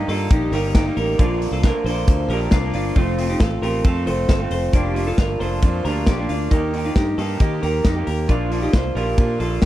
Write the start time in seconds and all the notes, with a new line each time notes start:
0.08 G2 D#3 G3 A#3 D#4 F4 A4, open hi-hat
0.30 A#1 D#4 G4, kick, hi-hat pedal, ride
0.52 G1 D#3 G3 A#3 D#4 G4 A#4, open hi-hat
0.75 D#4 G4, kick, snare, hi-hat pedal, ride
0.86 G3 A#3 D#4
0.97 A1 G4 A#4, open hi-hat
1.19 A#1 A#2 D3 F3 A#3 D4 F4, kick, hi-hat pedal, ride
1.42 open hi-hat
1.51 C2 F4 A4
1.63 D3 F3 A#3 D4 F4 A#4, kick, snare, hi-hat pedal, ride
1.84 A#1 D3 F3 A4 C5, open hi-hat
1.88 A#3 D4
2.08 D2, kick, hi-hat pedal, ride
2.28 A#1 A#2 D3 F3 G4 A#4, open hi-hat
2.33 A#3 D4
2.51 C2 D4 F4, kick, snare, hi-hat pedal, ride
2.62 F3 A#3 D4
2.73 G1 D4 F4, open hi-hat
2.96 F1 F3 A3 C4 F4, kick, ride
3.18 F3 A3 C4 F4, open hi-hat
3.30 D#4 G4
3.40 A1 F4 A4, kick, snare, hi-hat pedal, ride
3.61 A1 F3 A3 C4 F4 G4 A#4, open hi-hat
3.84 F2 F3 A3 C4 F4 A4, kick, hi-hat pedal, ride
3.89 F4
4.06 F1 F3 A3 C4 A4 C5, open hi-hat
4.10 F4
4.29 G1 F4 A4, kick, snare, hi-hat pedal, ride
4.40 A3 C4 F4
4.50 F1 A4 C5, open hi-hat
4.73 F1 F3 A#3 D4 F4 G4, kick, hi-hat pedal, ride
4.94 F3 A#3 D4 F4, open hi-hat
5.07 F4 A4
5.18 G1 F4 A#4, kick, snare, hi-hat pedal, ride
5.39 F1 F3 A#3 D4 F4 A4 C5, open hi-hat
5.62 F2 F3 A#3 D4 F4, kick, hi-hat pedal, ride
5.85 D2 F3 A#3 D4 F4 G4 A#4, open hi-hat
6.07 A#1 D4 G4, kick, snare, hi-hat pedal, ride
6.18 A#3 D4 F4
6.29 D2 D4 F4, open hi-hat
6.51 D#2 D#3 A#3 D#4 G4, kick, hi-hat pedal, ride
6.73 D#3 A#3 D#4 G4, open hi-hat
6.85 D4 F4
6.96 G2 D#4 G4, kick, snare, hi-hat pedal, ride
7.18 G2 D#3 A#3 D#4 F4 G4 A4, open hi-hat
7.39 D#3 A#3 D#4 G4, kick, hi-hat pedal, ride
7.61 D#2 D#3 A#3 D#4 G4 A#4, open hi-hat
7.85 F2 D#4 G4, kick, snare, hi-hat pedal, ride
7.96 A#3 D#4 G4
8.07 D#2 G4 A#4, open hi-hat
8.28 A#1 F3 A#3 D4 F4, kick, hi-hat pedal, ride
8.50 F3 A#3 D4 F4, open hi-hat
8.62 D#4 G4
8.73 C2 F4 C5, kick, snare, hi-hat pedal, ride
8.95 A#1 A#2 F3 A#3 D4 F4 G4 A#4, open hi-hat
9.17 A#2 F3 A#3 D4 F4, kick, hi-hat pedal, ride
9.39 A#1 F3 A#3 D4 F4 A4, open hi-hat
9.62 snare, hi-hat pedal, ride